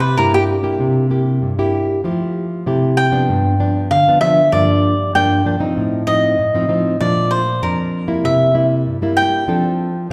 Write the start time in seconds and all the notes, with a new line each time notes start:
Already playing: C3
0.00 B4
0.17 G2 A#3 E4 G4 A#4
0.34 G4
0.63 A#3 E4 G4
0.80 C3
1.10 A#3 E4 G4
1.42 G2
1.59 A#3 E4 G4
2.04 F3 A3 E4 G4
2.66 C3 A3 E4 G4
2.97 G5
3.11 F3 B3 D4
3.29 G2
3.59 F3 B3 D4
3.91 D3 F5
4.08 F3 B3 D4
4.21 F3 B3 D4 E5
4.52 G2 F3 A#3 D4 D5
5.15 G2 F3 A#3 D4 G5
5.45 F3 A#3 D4
5.60 F3 C4 D#4
5.77 A2
6.07 F3 C4 D#4 D#5
6.39 A2
6.55 F3 C4 D#4
6.69 F3 C4 D#4
7.01 A#2 F3 A3 D4 D5
7.31 C5
7.62 F2 F3 D4 A#4
8.07 G3 A#3 E4
8.24 C3 E5
8.54 G3 A#3 E4
8.86 G2
9.02 G3 A#3 E4
9.17 G5
9.48 F3 C4 D4 A4